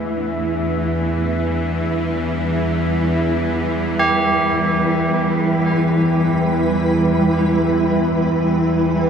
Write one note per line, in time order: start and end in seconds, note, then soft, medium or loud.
0.00 9.10 E2 medium
0.00 9.10 E3 medium
0.00 0.67 A3 medium
0.00 2.43 D4 medium
0.00 9.10 E4 medium
0.00 0.68 B4 medium
0.00 9.10 E5 medium
0.00 0.66 F#5 medium
0.67 9.10 G3 medium
1.64 9.10 E4 medium
2.13 9.10 B4 medium
3.99 9.10 G4 medium
4.65 9.10 G5 medium